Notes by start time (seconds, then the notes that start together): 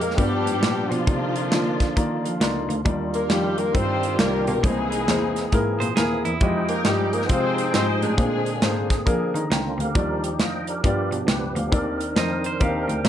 Already playing: F2 G#3 C4 D#4 A#4
0.01 A#3 A#4, closed hi-hat
0.10 snare
0.17 G2 F3 G3 B3 D4 F4 G4 D5, kick, closed hi-hat
0.46 G#2, closed hi-hat
0.62 A#2 B3 F4 G4 D5, snare, closed hi-hat
0.90 B2 F3 A#3 D4 F4, closed hi-hat
1.07 C3 D3 A#3 D4 D#4 F4 D5, kick, closed hi-hat
1.36 closed hi-hat
1.52 D3 A#3 D#4 F4 D5, snare, closed hi-hat
1.80 kick, snare, closed hi-hat
1.97 D#3 A#3 D#4 F4 D5, kick, closed hi-hat
2.25 F3 F5, closed hi-hat
2.41 C#2 A#3 D#4 F4 D5 C6, snare, closed hi-hat
2.69 D2, closed hi-hat
2.84 D#2 D#3 G3 D4 D#4 E4 F4 D5, kick, closed hi-hat
2.90 F4
3.14 A#3 A#4, closed hi-hat
3.30 F2 G3 D#4 F4 G4 F5, snare, closed hi-hat
3.58 A#3 A#4, closed hi-hat
3.74 G2 G3 C4 D#4 F4 G4 C5, kick, closed hi-hat
4.03 closed hi-hat
4.19 C2 G3 A#3 D#4 F4 A#4 D5, snare, closed hi-hat
4.47 B2 A#3 A#4, closed hi-hat
4.59 G3
4.63 C2 C3 E3 G#3 A#3 C4 D#4 E4 G#4 C5, kick, closed hi-hat
4.92 closed hi-hat
5.08 E2 A#3 E4 G#4 C5, snare, closed hi-hat
5.36 snare, closed hi-hat
5.52 G#2 A#3 E4 G#4 A#4, kick, closed hi-hat
5.80 A#2 C5, closed hi-hat
5.96 D#2 A#3 E4 G#4 A#4, snare, closed hi-hat
6.25 E2 E4, closed hi-hat
6.41 F2 F3 G#3 D#4 F4 F#4 G4 G#4 D#5, kick, closed hi-hat
6.48 G5
6.69 A#3 A#4, closed hi-hat
6.85 G2 G3 G#3 F4 G4 D#5, snare, closed hi-hat
7.13 A#3 A#4, closed hi-hat
7.22 B3, snare
7.29 C3 G#3 C4 D#4 F4 G4 G#4 C5 F5, kick, closed hi-hat
7.58 closed hi-hat
7.74 G#2 G#3 C4 F4 G4 C5 D#5, snare, closed hi-hat
8.02 A2 G#3 C4 D4 G#4, closed hi-hat
8.18 A#2 C3 A#3 C4 D4 G#4 C5, kick, closed hi-hat
8.24 D3
8.46 closed hi-hat
8.62 G#2 A#3 D4 G#4 C5, snare, closed hi-hat
8.90 kick, snare, closed hi-hat
9.06 F3 A#3 D4 G#4 A#4, kick, closed hi-hat
9.35 D#3 A#5, closed hi-hat
9.51 C#2 D4 F4 G5 A#5, snare, closed hi-hat
9.78 D2 G4 A#4 F5, closed hi-hat
9.95 D#2 D#3 F3 G3 D4 D#4 F4 F#4 D5, kick, closed hi-hat
10.01 G4
10.23 G5, closed hi-hat
10.39 F2 D#5 F5 G5, snare, closed hi-hat
10.67 G4 A#4 D5, closed hi-hat
10.84 G2 F3 B3 D4 F4 G4 D5, kick, closed hi-hat
11.12 B2 G4, closed hi-hat
11.27 C#2 G4 B4 G5, snare, closed hi-hat
11.56 D2 G4 F5, closed hi-hat
11.72 D#2 D#3 C4 D4 D#4 A4 A#4 D5, kick, closed hi-hat
11.78 A#4
12.01 closed hi-hat
12.16 F2 C4 D#4 A#4 C5 D#5, snare, closed hi-hat
12.44 C5, closed hi-hat
12.60 D#2 C4 D#4 G4 A#4 F5, kick, closed hi-hat
12.88 D2, closed hi-hat
13.04 A#2 C4 D#4 A#4 D5, snare, closed hi-hat